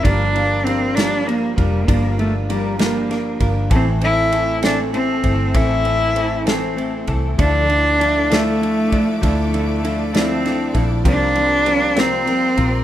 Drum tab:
RD |xxxxxx|xxxxxx|xxxxxx|xxxxxx|
SD |---o--|---oo-|---o--|---o--|
BD |o----o|o----o|o----o|o----o|

RD |xxxxxx|xxxxxx|xxxxxx|
SD |---o--|---oo-|---o--|
BD |o----o|o----o|o----o|